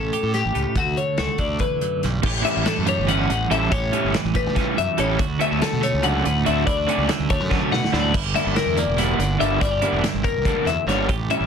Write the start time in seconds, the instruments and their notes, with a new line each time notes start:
Already playing: clean electric guitar A2 C#4 E4 A4
0.13 clean electric guitar G4, closed hi-hat
0.23 fingered electric bass A2
0.34 clean electric guitar G4, snare, closed hi-hat
0.45 fingered electric bass A1
0.55 fingered electric bass C#2, clean electric guitar A2, closed hi-hat
0.76 fingered electric bass D2, clean electric guitar D2 A3 F#4, kick, closed hi-hat
0.97 clean electric guitar C#5, closed hi-hat
1.18 fingered electric bass C#2, clean electric guitar F#4 A4, snare, closed hi-hat
1.38 fingered electric bass D2, clean electric guitar D3 D5, kick, closed hi-hat
1.59 clean electric guitar E2 B4, kick, closed hi-hat
1.81 clean electric guitar F#2, closed hi-hat
2.03 fingered electric bass B1, clean electric guitar G2, snare, closed hi-hat
2.23 fingered electric bass A1, clean electric guitar A2 G4, muted overdriven electric guitar stroke, kick, crash
2.43 overdriven electric guitar E3 G3 C#4 E4, clean electric guitar C#4 E5, closed hi-hat
2.57 fingered electric bass A1
2.65 clean electric guitar E3 A4, muted overdriven electric guitar stroke, snare, closed hi-hat
2.78 fingered electric bass F#2
2.86 clean electric guitar G3 C#5, muted overdriven electric guitar stroke, closed hi-hat
2.99 fingered electric bass G1
3.08 overdriven electric guitar E3 G3 C#4 E4, clean electric guitar B3 F#5, closed hi-hat
3.18 clean electric guitar C#4
3.29 fingered electric bass A1, clean electric guitar E2, muted overdriven electric guitar stroke, closed hi-hat
3.50 fingered electric bass A1, overdriven electric guitar E3 G3 C#4 E4, clean electric guitar A4 E5, closed hi-hat
3.71 fingered electric bass A1, clean electric guitar A2 G4 C#5, muted overdriven electric guitar stroke, kick, closed hi-hat
3.92 overdriven electric guitar E3 G3 C#4 E4, clean electric guitar C#4, closed hi-hat
4.04 fingered electric bass G1
4.13 clean electric guitar E3, muted overdriven electric guitar stroke, snare, closed hi-hat
4.25 fingered electric bass A1
4.35 clean electric guitar G3 B4, muted overdriven electric guitar stroke, kick, closed hi-hat
4.47 fingered electric bass C#2
4.56 overdriven electric guitar E3 G3 C#4 E4, clean electric guitar C#4, kick, snare, closed hi-hat
4.77 clean electric guitar E2 E5, fingered electric bass F#2, muted overdriven electric guitar stroke, closed hi-hat
4.98 fingered electric bass A1, overdriven electric guitar E3 G3 C#4 E4, clean electric guitar A4 C#5, closed hi-hat
5.19 clean electric guitar D2 F#4, fingered electric bass D2, muted overdriven electric guitar stroke, kick, closed hi-hat
5.39 overdriven electric guitar D3 F#3 A3 D4, clean electric guitar B3 E5, closed hi-hat
5.51 fingered electric bass D2, clean electric guitar C#4
5.60 clean electric guitar A4, muted overdriven electric guitar stroke, snare, closed hi-hat
5.73 fingered electric bass B2
5.81 clean electric guitar A3 C#5, muted overdriven electric guitar stroke, closed hi-hat
5.94 fingered electric bass C#2
6.03 overdriven electric guitar D3 F#3 A3 D4, clean electric guitar C#4 F#5, closed hi-hat
6.24 fingered electric bass D2, clean electric guitar A2, muted overdriven electric guitar stroke, closed hi-hat
6.45 fingered electric bass D2, overdriven electric guitar D3 F#3 A3 D4, clean electric guitar F#4 E5, closed hi-hat
6.67 clean electric guitar D2 E4 D5, fingered electric bass D2, muted overdriven electric guitar stroke, kick, closed hi-hat
6.77 clean electric guitar F#4
6.87 overdriven electric guitar D3 F#3 A3 D4, clean electric guitar C#4, closed hi-hat
6.98 fingered electric bass C#2
7.09 clean electric guitar D3, muted overdriven electric guitar stroke, snare, closed hi-hat
7.20 fingered electric bass D2
7.30 clean electric guitar A3 C#5, muted overdriven electric guitar stroke, kick, closed hi-hat
7.40 fingered electric bass F#2
7.50 overdriven electric guitar D3 F#3 A3 D4, clean electric guitar B3, kick, snare
7.61 clean electric guitar C#4
7.71 clean electric guitar A2 F#5, fingered electric bass B2, muted overdriven electric guitar stroke, snare
7.84 snare
7.93 fingered electric bass D2, overdriven electric guitar D3 F#3 A3 D4, clean electric guitar E4 D5, snare
8.04 clean electric guitar F#4
8.13 fingered electric bass G1, clean electric guitar G2 E4, muted overdriven electric guitar stroke, kick, crash
8.24 clean electric guitar G4
8.35 overdriven electric guitar D3 G3 A#3 D4, clean electric guitar E4 E5, snare, closed hi-hat
8.46 fingered electric bass G1
8.56 clean electric guitar D3 A#4, muted overdriven electric guitar stroke, snare, closed hi-hat
8.66 fingered electric bass E2
8.76 clean electric guitar A#3 D5, muted overdriven electric guitar stroke, closed hi-hat
8.87 fingered electric bass E1
8.97 overdriven electric guitar D3 G3 A#3 D4, clean electric guitar E4 F#5, snare, closed hi-hat
9.18 fingered electric bass G1, clean electric guitar D3, muted overdriven electric guitar stroke, closed hi-hat
9.39 fingered electric bass G1, overdriven electric guitar D3 G3 A#3 D4, clean electric guitar G4 E5, closed hi-hat
9.60 fingered electric bass G1, clean electric guitar G2 E4 D5, muted overdriven electric guitar stroke, kick, closed hi-hat
9.71 clean electric guitar G4
9.82 overdriven electric guitar D3 G3 A#3 D4, clean electric guitar E4, closed hi-hat
9.92 fingered electric bass E1
10.01 clean electric guitar D3, muted overdriven electric guitar stroke, snare, closed hi-hat
10.14 fingered electric bass G1
10.24 clean electric guitar A#3 A#4, muted overdriven electric guitar stroke, kick, closed hi-hat
10.34 fingered electric bass C#2
10.45 clean electric guitar E2, overdriven electric guitar D3 G3 A#3 D4, kick, closed hi-hat
10.65 fingered electric bass E2, clean electric guitar F#2 E5, muted overdriven electric guitar stroke, snare, closed hi-hat
10.86 fingered electric bass G1, clean electric guitar G2 C#5, overdriven electric guitar D3 G3 A#3 D4, snare, closed hi-hat
11.09 fingered electric bass A1, clean electric guitar A2 G4, muted overdriven electric guitar stroke, kick, closed hi-hat
11.30 overdriven electric guitar E3 G3 C#4 E4, clean electric guitar C#4 E5, closed hi-hat
11.40 fingered electric bass A1